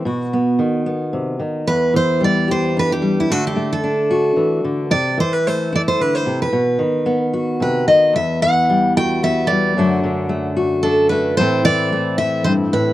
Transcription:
<<
  \new Staff \with { instrumentName = "Steel-string acoustic guitar" } { \time 3/4 \key e \minor \tempo 4 = 111 r2. | b'8 c''8 d''8 c''8 b'16 g'8 e'16 | fis'16 g'8 a'4. r8. | d''8 c''16 b'16 c''8 d''16 c''16 b'16 c''8 b'16~ |
b'4~ b'16 r8. b'8 dis''8 | e''8 fis''4 g''8 e''8 d''8~ | d''8 r4. a'8 b'8 | c''8 d''4 e''8 c''8 b'8 | }
  \new Staff \with { instrumentName = "Steel-string acoustic guitar" } { \clef bass \time 3/4 \key e \minor << { fis'8 b4 b4. | r4 g8 g'8 d'8 g8 | <a d'>4 d'8 fis'4. | r4 a8 e'4. |
r4 b8 fis'4. | r4 g8 fis'8 b8 g8 | <d a d' fis'>4 a8 fis'8 d'8 a8 | <e a c' e'>4 a8 e'4. | } \\ { b,4 dis4 c8 dis8 | e,8 e2~ e8 | d8 a4. e8 d8 | c8 e4. d8 c8 |
b,8 dis4. c8 dis8 | e,8 e2~ e8 | fis,8 d2~ d8 | a,8 e4. g,8 a,8 | } >> }
>>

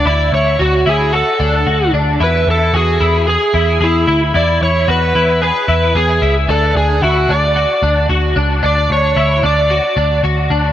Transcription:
<<
  \new Staff \with { instrumentName = "Electric slide guitar" } { \time 4/4 \key e \mixolydian \tempo 4 = 112 d''8 cis''8 fis'8 gis'8 a'4. r8 | b'8 a'8 gis'4 gis'4 e'8. r16 | d''8 cis''8 b'4 b'4 gis'8. r16 | a'8 gis'8 fis'8 d''4. r4 |
d''8 cis''4 d''4. r4 | }
  \new Staff \with { instrumentName = "Clean electric guitar" } { \time 4/4 \key e \mixolydian e'4 fis'8 e'8 fis'8 d'8 fis'8 d'8 | e'4 fis'8 e'8 gis'8 e'8 gis'8 e'8 | e'4 fis'8 e'8 gis'8 e'8 gis'8 e'8 | d'4 e'8 d'8 fis'8 d'8 fis'8 d'8 |
d'4 e'8 d'8 fis'8 d'8 fis'8 d'8 | }
  \new Staff \with { instrumentName = "Picked electric bass" } { \clef bass \time 4/4 \key e \mixolydian d,8 d,8 d,8 d,8. r16 d,8 d,8 d,8 | e,8 e,8 e,8 e,8. r16 e,8 e,8 d,8 | e,8 e,8 e,8 e,8. r16 e,8 e,8 cis,8 | d,8 d,8 d,8 d,8. r16 d,8 d,8 cis,8 |
d,8 d,8 d,8 d,8. r16 d,8 d,8 d,8 | }
>>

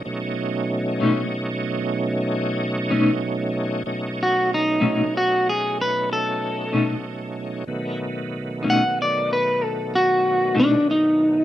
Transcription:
<<
  \new Staff \with { instrumentName = "Clean electric guitar" } { \time 12/8 \key b \mixolydian \tempo 4. = 63 a'8 r1 r4. | r8 fis'8 dis'4 fis'8 gis'8 b'8 a'2~ a'8~ | a'8 r4 fis''8 d''8 b'8 a'8 fis'4 d'8 dis'4 | }
  \new Staff \with { instrumentName = "Clean electric guitar" } { \time 12/8 \key b \mixolydian r4. <b, a cis' dis'>8 r2 r8 <b, a cis' dis'>8 r4 | r4. <b, a cis' dis'>8 r2 r8 <b, a cis' dis'>8 r4 | r4. <b, a cis' dis'>8 r2 r8 <b, a cis' dis'>8 r4 | }
  \new Staff \with { instrumentName = "Tonewheel organ" } { \time 12/8 \key b \mixolydian <b, fis a cis' dis'>1. | <b, fis a cis' dis'>1. | <b, dis fis a b>1. | }
>>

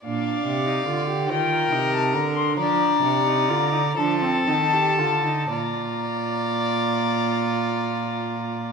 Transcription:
<<
  \new Staff \with { instrumentName = "Violin" } { \time 6/8 \key bes \major \tempo 4. = 41 f''4. g''8. a''16 bes''16 c'''16 | bes''4. a''4. | bes''2. | }
  \new Staff \with { instrumentName = "Violin" } { \time 6/8 \key bes \major d''4. bes'4. | d''4. a'4. | d''2. | }
  \new Staff \with { instrumentName = "Viola" } { \time 6/8 \key bes \major d'8. ees'16 f'16 g'16 f'8 ees'8 d'8 | d'8. ees'16 f'16 ees'16 d'16 c'16 ees'16 g'16 f'16 ees'16 | f'2. | }
  \new Staff \with { instrumentName = "Cello" } { \clef bass \time 6/8 \key bes \major bes,8 c8 d8 ees8 c8 d8 | f8 c8 d8 f8 ees8 d8 | bes,2. | }
>>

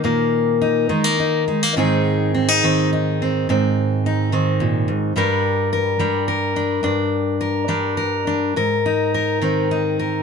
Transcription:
\new Staff \with { instrumentName = "Steel-string acoustic guitar" } { \time 3/4 \key aes \lydian \tempo 4 = 106 << { bes4 ees'8 aes16 bes16 ees'8 aes16 bes16 | <ees c' ees' aes'>4 c'16 ees'16 c'8 ees'8 c'8 | c'4 ees'8 c'4. | <g d' bes'>4 bes'8 d'8 bes'8 d'8 |
d'4 bes'8 d'8 bes'8 d'8 | bes'8 ees'8 bes'8 c'8 ees'8 bes'8 | } \\ { <bes, ees>4. ees4. | aes,4. ees4. | aes,4. ees8 bes,8 aes,8 | g,4. g4. |
g,4. g4. | aes,4. ees4. | } >> }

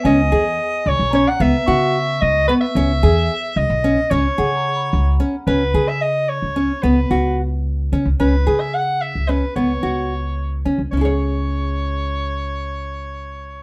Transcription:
<<
  \new Staff \with { instrumentName = "Celesta" } { \time 5/8 \key cis \dorian \tempo 4 = 110 gis''2 ais''8~ | ais''8 cis'''2~ | cis'''8 r2 | r8 fis''16 ais''16 b''4.~ |
b''4 r4. | r2 r8 | r2 r8 | r2 r8 |
r2 r8 | r2 r8 | }
  \new Staff \with { instrumentName = "Soprano saxophone" } { \time 5/8 \key cis \dorian dis''4. cis''8 cis''16 fis''16 | e''4. dis''8 b'16 e''16~ | e''4. dis''4 | cis''2 r8 |
b'8. e''16 dis''8 cis''4 | b'4 r4. | b'8. e''16 fis''8 e''8 b'8 | cis''2 r8 |
cis''2~ cis''8~ | cis''2~ cis''8 | }
  \new Staff \with { instrumentName = "Nylon-string guitar" } { \time 5/8 \key cis \dorian cis'8 gis'4 r8 cis'8 | b8 fis'4 r8 b8 | cis'8 gis'4 r8 cis'8 | cis'8 gis'4 r8 cis'8 |
cis'8 gis'4 r8 cis'8 | b8 fis'4 r8 cis'8 | cis'8 gis'4 r8 cis'8 | b8 fis'4 r8 cis'8 |
<cis' e' gis' cis''>2~ <cis' e' gis' cis''>8~ | <cis' e' gis' cis''>2~ <cis' e' gis' cis''>8 | }
  \new Staff \with { instrumentName = "Upright bass" } { \clef bass \time 5/8 \key cis \dorian cis,8 e,8 r8 cis,16 b,,8 r16 | cis,16 r16 cis4 cis,8 r8 | cis,8 e,8 r8 cis,16 b,,8 r16 | cis,16 r16 cis4 cis,8 r8 |
cis,8 cis4~ cis16 cis,8 r16 | cis,8 cis,4. cis16 cis,16 | cis,8 cis4~ cis16 cis,8 r16 | cis,8 cis,4. cis16 cis,16 |
cis,2~ cis,8~ | cis,2~ cis,8 | }
>>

